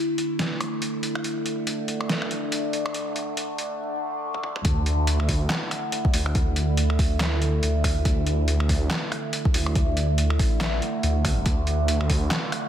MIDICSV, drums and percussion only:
0, 0, Header, 1, 2, 480
1, 0, Start_track
1, 0, Key_signature, -1, "minor"
1, 0, Tempo, 425532
1, 1404, Time_signature, 4, 2, 24, 8
1, 14310, End_track
2, 0, Start_track
2, 0, Title_t, "Drums"
2, 204, Note_on_c, 9, 42, 52
2, 317, Note_off_c, 9, 42, 0
2, 443, Note_on_c, 9, 38, 121
2, 443, Note_on_c, 9, 42, 78
2, 556, Note_off_c, 9, 38, 0
2, 556, Note_off_c, 9, 42, 0
2, 683, Note_on_c, 9, 26, 78
2, 683, Note_on_c, 9, 42, 53
2, 796, Note_off_c, 9, 26, 0
2, 796, Note_off_c, 9, 42, 0
2, 923, Note_on_c, 9, 42, 79
2, 1036, Note_off_c, 9, 42, 0
2, 1162, Note_on_c, 9, 42, 52
2, 1275, Note_off_c, 9, 42, 0
2, 1302, Note_on_c, 9, 26, 78
2, 1403, Note_on_c, 9, 42, 71
2, 1415, Note_off_c, 9, 26, 0
2, 1516, Note_off_c, 9, 42, 0
2, 1643, Note_on_c, 9, 42, 50
2, 1756, Note_off_c, 9, 42, 0
2, 1883, Note_on_c, 9, 42, 76
2, 1995, Note_off_c, 9, 42, 0
2, 2121, Note_on_c, 9, 42, 51
2, 2234, Note_off_c, 9, 42, 0
2, 2262, Note_on_c, 9, 26, 65
2, 2362, Note_on_c, 9, 38, 126
2, 2362, Note_on_c, 9, 42, 75
2, 2375, Note_off_c, 9, 26, 0
2, 2475, Note_off_c, 9, 38, 0
2, 2475, Note_off_c, 9, 42, 0
2, 2503, Note_on_c, 9, 26, 64
2, 2604, Note_on_c, 9, 42, 53
2, 2616, Note_off_c, 9, 26, 0
2, 2717, Note_off_c, 9, 42, 0
2, 2844, Note_on_c, 9, 42, 79
2, 2956, Note_off_c, 9, 42, 0
2, 3083, Note_on_c, 9, 42, 52
2, 3196, Note_off_c, 9, 42, 0
2, 3222, Note_on_c, 9, 26, 85
2, 3322, Note_on_c, 9, 42, 72
2, 3335, Note_off_c, 9, 26, 0
2, 3434, Note_off_c, 9, 42, 0
2, 3562, Note_on_c, 9, 42, 51
2, 3675, Note_off_c, 9, 42, 0
2, 3802, Note_on_c, 9, 42, 74
2, 3915, Note_off_c, 9, 42, 0
2, 4043, Note_on_c, 9, 42, 53
2, 4156, Note_off_c, 9, 42, 0
2, 4901, Note_on_c, 9, 48, 53
2, 5003, Note_on_c, 9, 47, 76
2, 5014, Note_off_c, 9, 48, 0
2, 5116, Note_off_c, 9, 47, 0
2, 5142, Note_on_c, 9, 45, 83
2, 5242, Note_on_c, 9, 42, 79
2, 5244, Note_on_c, 9, 36, 122
2, 5255, Note_off_c, 9, 45, 0
2, 5355, Note_off_c, 9, 42, 0
2, 5357, Note_off_c, 9, 36, 0
2, 5484, Note_on_c, 9, 42, 55
2, 5596, Note_off_c, 9, 42, 0
2, 5722, Note_on_c, 9, 42, 83
2, 5835, Note_off_c, 9, 42, 0
2, 5863, Note_on_c, 9, 26, 52
2, 5963, Note_on_c, 9, 46, 64
2, 5964, Note_on_c, 9, 36, 61
2, 5976, Note_off_c, 9, 26, 0
2, 6076, Note_off_c, 9, 46, 0
2, 6077, Note_off_c, 9, 36, 0
2, 6202, Note_on_c, 9, 26, 51
2, 6202, Note_on_c, 9, 38, 119
2, 6202, Note_on_c, 9, 39, 91
2, 6202, Note_on_c, 9, 42, 82
2, 6315, Note_off_c, 9, 26, 0
2, 6315, Note_off_c, 9, 38, 0
2, 6315, Note_off_c, 9, 39, 0
2, 6315, Note_off_c, 9, 42, 0
2, 6443, Note_on_c, 9, 26, 62
2, 6443, Note_on_c, 9, 42, 57
2, 6556, Note_off_c, 9, 26, 0
2, 6556, Note_off_c, 9, 42, 0
2, 6681, Note_on_c, 9, 42, 83
2, 6794, Note_off_c, 9, 42, 0
2, 6823, Note_on_c, 9, 36, 110
2, 6921, Note_on_c, 9, 46, 88
2, 6936, Note_off_c, 9, 36, 0
2, 7034, Note_off_c, 9, 46, 0
2, 7062, Note_on_c, 9, 26, 61
2, 7163, Note_on_c, 9, 42, 73
2, 7164, Note_on_c, 9, 36, 127
2, 7175, Note_off_c, 9, 26, 0
2, 7276, Note_off_c, 9, 42, 0
2, 7277, Note_off_c, 9, 36, 0
2, 7402, Note_on_c, 9, 42, 52
2, 7515, Note_off_c, 9, 42, 0
2, 7641, Note_on_c, 9, 42, 80
2, 7754, Note_off_c, 9, 42, 0
2, 7782, Note_on_c, 9, 26, 53
2, 7884, Note_on_c, 9, 36, 111
2, 7886, Note_on_c, 9, 46, 60
2, 7895, Note_off_c, 9, 26, 0
2, 7997, Note_off_c, 9, 36, 0
2, 7998, Note_off_c, 9, 46, 0
2, 8125, Note_on_c, 9, 38, 124
2, 8125, Note_on_c, 9, 39, 98
2, 8125, Note_on_c, 9, 42, 82
2, 8238, Note_off_c, 9, 38, 0
2, 8238, Note_off_c, 9, 39, 0
2, 8238, Note_off_c, 9, 42, 0
2, 8365, Note_on_c, 9, 42, 54
2, 8478, Note_off_c, 9, 42, 0
2, 8604, Note_on_c, 9, 42, 81
2, 8717, Note_off_c, 9, 42, 0
2, 8844, Note_on_c, 9, 36, 66
2, 8846, Note_on_c, 9, 26, 51
2, 8846, Note_on_c, 9, 46, 89
2, 8957, Note_off_c, 9, 36, 0
2, 8959, Note_off_c, 9, 26, 0
2, 8959, Note_off_c, 9, 46, 0
2, 9083, Note_on_c, 9, 42, 74
2, 9084, Note_on_c, 9, 36, 125
2, 9196, Note_off_c, 9, 42, 0
2, 9197, Note_off_c, 9, 36, 0
2, 9323, Note_on_c, 9, 42, 54
2, 9436, Note_off_c, 9, 42, 0
2, 9563, Note_on_c, 9, 42, 78
2, 9676, Note_off_c, 9, 42, 0
2, 9703, Note_on_c, 9, 26, 55
2, 9804, Note_on_c, 9, 36, 65
2, 9805, Note_on_c, 9, 46, 60
2, 9816, Note_off_c, 9, 26, 0
2, 9916, Note_off_c, 9, 36, 0
2, 9918, Note_off_c, 9, 46, 0
2, 10044, Note_on_c, 9, 26, 54
2, 10044, Note_on_c, 9, 38, 126
2, 10044, Note_on_c, 9, 39, 91
2, 10044, Note_on_c, 9, 42, 78
2, 10157, Note_off_c, 9, 26, 0
2, 10157, Note_off_c, 9, 38, 0
2, 10157, Note_off_c, 9, 39, 0
2, 10157, Note_off_c, 9, 42, 0
2, 10285, Note_on_c, 9, 26, 66
2, 10285, Note_on_c, 9, 42, 54
2, 10397, Note_off_c, 9, 26, 0
2, 10397, Note_off_c, 9, 42, 0
2, 10523, Note_on_c, 9, 42, 78
2, 10636, Note_off_c, 9, 42, 0
2, 10663, Note_on_c, 9, 36, 115
2, 10764, Note_on_c, 9, 46, 89
2, 10776, Note_off_c, 9, 36, 0
2, 10877, Note_off_c, 9, 46, 0
2, 10902, Note_on_c, 9, 26, 65
2, 11004, Note_on_c, 9, 36, 127
2, 11004, Note_on_c, 9, 42, 72
2, 11014, Note_off_c, 9, 26, 0
2, 11116, Note_off_c, 9, 42, 0
2, 11117, Note_off_c, 9, 36, 0
2, 11244, Note_on_c, 9, 42, 51
2, 11357, Note_off_c, 9, 42, 0
2, 11483, Note_on_c, 9, 42, 75
2, 11596, Note_off_c, 9, 42, 0
2, 11622, Note_on_c, 9, 26, 57
2, 11724, Note_on_c, 9, 36, 111
2, 11725, Note_on_c, 9, 46, 61
2, 11735, Note_off_c, 9, 26, 0
2, 11837, Note_off_c, 9, 36, 0
2, 11838, Note_off_c, 9, 46, 0
2, 11966, Note_on_c, 9, 38, 124
2, 11966, Note_on_c, 9, 39, 90
2, 11966, Note_on_c, 9, 42, 75
2, 12079, Note_off_c, 9, 38, 0
2, 12079, Note_off_c, 9, 39, 0
2, 12079, Note_off_c, 9, 42, 0
2, 12206, Note_on_c, 9, 42, 51
2, 12319, Note_off_c, 9, 42, 0
2, 12445, Note_on_c, 9, 42, 78
2, 12558, Note_off_c, 9, 42, 0
2, 12685, Note_on_c, 9, 36, 65
2, 12686, Note_on_c, 9, 26, 57
2, 12686, Note_on_c, 9, 46, 90
2, 12798, Note_off_c, 9, 36, 0
2, 12799, Note_off_c, 9, 26, 0
2, 12799, Note_off_c, 9, 46, 0
2, 12923, Note_on_c, 9, 42, 72
2, 12926, Note_on_c, 9, 36, 126
2, 13036, Note_off_c, 9, 42, 0
2, 13038, Note_off_c, 9, 36, 0
2, 13163, Note_on_c, 9, 42, 53
2, 13276, Note_off_c, 9, 42, 0
2, 13404, Note_on_c, 9, 42, 78
2, 13516, Note_off_c, 9, 42, 0
2, 13544, Note_on_c, 9, 26, 54
2, 13645, Note_on_c, 9, 46, 65
2, 13646, Note_on_c, 9, 36, 64
2, 13657, Note_off_c, 9, 26, 0
2, 13757, Note_off_c, 9, 46, 0
2, 13758, Note_off_c, 9, 36, 0
2, 13885, Note_on_c, 9, 26, 57
2, 13885, Note_on_c, 9, 38, 120
2, 13885, Note_on_c, 9, 39, 86
2, 13885, Note_on_c, 9, 42, 78
2, 13998, Note_off_c, 9, 26, 0
2, 13998, Note_off_c, 9, 38, 0
2, 13998, Note_off_c, 9, 39, 0
2, 13998, Note_off_c, 9, 42, 0
2, 14126, Note_on_c, 9, 26, 68
2, 14126, Note_on_c, 9, 42, 53
2, 14238, Note_off_c, 9, 26, 0
2, 14238, Note_off_c, 9, 42, 0
2, 14310, End_track
0, 0, End_of_file